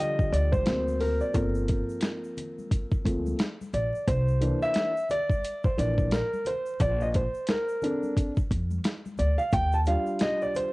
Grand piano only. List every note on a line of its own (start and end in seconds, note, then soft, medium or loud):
0.00 0.63 D3 medium
0.00 0.62 F3 medium
0.00 0.63 G3 medium
0.00 0.34 D#5 loud
0.32 0.51 D5 loud
0.52 1.02 C5 medium
0.66 1.31 F#3 medium
0.66 1.31 A#3 soft
0.66 1.31 C4 medium
1.01 1.20 A#4 medium
1.21 1.35 D5 medium
1.33 3.03 F3 medium
1.33 3.04 A#3 soft
1.33 3.04 C4 medium
1.33 4.03 A4 soft
1.33 3.01 A#4 medium
3.05 3.36 F3 soft
3.05 3.36 A3 soft
3.05 3.36 A#3 soft
3.05 3.36 C4 medium
3.74 4.05 D5 medium
4.08 4.58 C5 medium
4.41 4.89 E3 medium
4.41 4.89 A#3 medium
4.41 4.90 D4 medium
4.62 5.07 E5 loud
5.11 5.66 D5 loud
5.65 5.78 C5 medium
5.77 6.08 E3 medium
5.77 6.08 A#3 soft
5.77 6.09 D4 medium
5.77 6.14 D5 medium
6.13 6.48 A#4 medium
6.47 6.78 C5 medium
6.81 7.02 D5 loud
7.02 7.07 D#5 medium
7.16 7.50 C5 medium
7.50 8.14 A#4 medium
7.82 8.31 C4 medium
7.82 8.31 D4 medium
7.82 8.30 A4 medium
9.19 9.40 D5 medium
9.38 9.51 F5 loud
9.53 9.74 G5 loud
9.74 9.79 A5 medium
9.87 10.73 G3 medium
9.87 10.73 D4 medium
9.87 10.73 F4 medium
9.87 10.23 F5 medium
10.22 10.40 D#5 loud
10.42 10.55 D5 medium
10.56 10.73 C5 loud